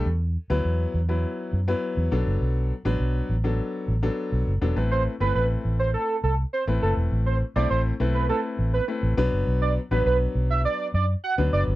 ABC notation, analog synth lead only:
X:1
M:4/4
L:1/16
Q:1/4=102
K:Ador
V:1 name="Analog synth lead"
z16 | z16 | z c z B B z2 c A2 A z c z A z | z c z d c z2 B A z2 B z4 |
z d z B B z2 e d2 d z f z d z |]